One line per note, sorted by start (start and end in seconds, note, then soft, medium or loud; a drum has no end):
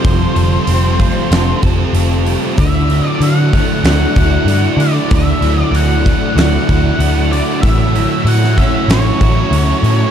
0.00 1.62 F3 medium
0.00 0.35 G3 medium
0.00 0.69 A3 medium
0.00 0.35 C4 medium
0.00 0.99 C4 medium
0.00 0.98 F4 medium
0.00 2.53 F4 medium
0.00 0.65 G4 medium
0.00 1.63 A4 medium
0.00 7.60 A4 medium
0.00 1.59 C5 medium
0.00 2.53 C5 medium
0.04 0.26 F1 medium
0.04 1.63 F3 medium
0.04 2.55 A5 medium
0.04 kick loud
0.04 open hi-hat medium
0.35 0.57 F1 medium
0.35 1.94 G3 medium
0.35 2.28 A4 medium
0.35 open hi-hat medium
0.66 1.09 F1 medium
0.66 1.31 C4 medium
0.66 1.61 G4 medium
0.66 open hi-hat medium
0.98 3.51 A3 medium
0.98 1.93 F4 medium
0.98 kick medium
0.98 open hi-hat medium
1.30 1.52 F1 medium
1.30 1.92 C4 medium
1.30 2.58 C4 medium
1.30 snare loud
1.30 open hi-hat medium
1.62 1.84 F1 medium
1.62 2.24 G4 medium
1.62 5.13 A4 medium
1.62 kick medium
1.62 open hi-hat soft
1.93 2.35 F1 medium
1.93 2.57 C4 medium
1.93 2.58 F4 medium
1.93 open hi-hat medium
2.25 2.58 G3 medium
2.25 2.57 G4 medium
2.25 open hi-hat soft
2.57 2.99 D2 medium
2.57 4.15 D3 medium
2.57 4.17 D3 medium
2.57 10.11 E4 medium
2.57 7.60 D5 medium
2.57 3.08 E5 loud
2.57 10.11 F#5 medium
2.57 kick loud
2.57 open hi-hat medium
2.87 3.22 F#3 medium
2.87 4.51 E4 medium
2.87 open hi-hat soft
3.08 3.23 D5 loud
3.19 3.62 D3 medium
3.19 3.84 F#3 medium
3.19 4.15 F#4 medium
3.19 3.85 F#5 medium
3.19 open hi-hat medium
3.51 6.05 A3 medium
3.51 4.47 A3 medium
3.51 kick medium
3.51 open hi-hat medium
3.84 4.04 D2 medium
3.84 5.42 F#3 medium
3.84 4.46 D4 medium
3.84 4.83 F#5 loud
3.84 snare loud
3.84 open hi-hat medium
4.15 4.37 D2 medium
4.15 5.78 E4 medium
4.15 4.78 F#4 medium
4.15 kick medium
4.15 open hi-hat soft
4.45 4.66 G2 medium
4.45 6.05 A3 medium
4.45 6.05 D4 medium
4.45 open hi-hat medium
4.77 4.98 D3 medium
4.77 5.10 D3 medium
4.77 5.74 F#4 medium
4.77 open hi-hat medium
4.81 5.12 D5 medium
5.11 5.32 D2 medium
5.11 6.69 D3 medium
5.11 5.63 E5 loud
5.11 kick loud
5.11 open hi-hat medium
5.41 5.62 D2 medium
5.41 5.75 F#3 medium
5.41 7.03 E4 medium
5.41 open hi-hat medium
5.63 5.78 D5 loud
5.71 6.13 D2 medium
5.71 6.37 F#3 medium
5.71 6.67 F#4 medium
5.71 open hi-hat medium
5.76 6.37 F#5 medium
6.05 7.01 A3 medium
6.05 8.57 A3 medium
6.05 kick medium
6.05 open hi-hat medium
6.35 6.57 D2 medium
6.35 7.95 F#3 medium
6.35 6.99 D4 medium
6.35 7.35 F#5 loud
6.35 snare loud
6.35 open hi-hat medium
6.68 6.90 D2 medium
6.68 7.98 E4 medium
6.68 7.30 F#4 medium
6.68 kick medium
6.68 open hi-hat soft
6.99 7.41 D2 medium
6.99 8.59 A3 medium
6.99 7.63 D4 medium
6.99 open hi-hat medium
7.31 7.64 D3 medium
7.31 7.96 F#4 medium
7.31 7.61 D5 medium
7.31 open hi-hat medium
7.61 8.05 A1 medium
7.61 9.20 A2 medium
7.61 9.22 A2 medium
7.61 10.11 A4 medium
7.61 8.28 E5 medium
7.61 kick loud
7.61 open hi-hat medium
7.65 10.11 C#5 medium
7.93 8.26 F#3 medium
7.93 9.52 E4 medium
7.93 open hi-hat medium
8.24 8.67 A2 medium
8.24 8.90 F#3 medium
8.24 9.21 F#4 medium
8.24 8.60 F#5 medium
8.24 open hi-hat medium
8.44 snare soft
8.57 10.11 A3 medium
8.57 9.53 C#4 medium
8.57 8.91 E5 medium
8.57 kick medium
8.57 open hi-hat soft
8.88 9.10 A1 medium
8.88 10.11 F#3 medium
8.88 9.50 C#4 medium
8.88 10.11 C#5 medium
8.88 snare loud
8.88 open hi-hat medium
9.21 9.42 A1 medium
9.21 10.11 E4 medium
9.21 9.84 F#4 medium
9.21 kick medium
9.21 open hi-hat soft
9.51 9.72 D2 medium
9.51 10.11 C#4 medium
9.51 open hi-hat medium
9.83 10.04 A2 medium
9.83 10.11 A2 medium
9.83 10.11 F#4 medium
9.83 open hi-hat soft